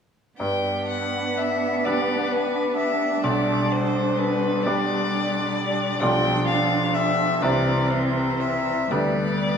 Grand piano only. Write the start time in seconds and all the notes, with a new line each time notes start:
0.40 G2
1.86 G3 D4 B4
3.23 B1
4.65 G3 D4 D5
6.01 B1 G3 F4 D5
7.42 C2 G3 E4 C5
8.91 D2 G3 D4 B4